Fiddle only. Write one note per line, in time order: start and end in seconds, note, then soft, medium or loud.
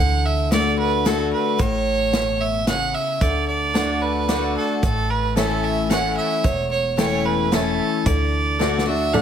0.00 0.27 F#5 loud
0.26 0.52 E5 medium
0.52 0.77 D5 medium
0.79 1.08 B4 medium
1.06 1.32 A4 medium
1.33 1.61 B4 medium
1.60 2.42 C#5 loud
2.41 2.68 E5 medium
2.68 2.96 F#5 loud
2.94 3.23 E5 medium
3.22 3.47 D5 medium
3.48 4.03 D5 loud
4.02 4.56 B4 medium
4.57 4.81 A4 medium
4.84 5.12 A4 medium
5.10 5.36 B4 medium
5.37 5.66 A4 medium
5.64 5.90 E5 medium
5.91 6.16 F#5 medium
6.17 6.45 E5 medium
6.44 6.71 C#5 loud
6.71 6.96 C#5 medium
6.99 7.27 C#5 loud
7.26 7.55 B4 medium
7.54 8.08 A4 medium
8.07 8.87 D5 medium
8.88 9.15 E5 medium
9.14 9.22 F#5 loud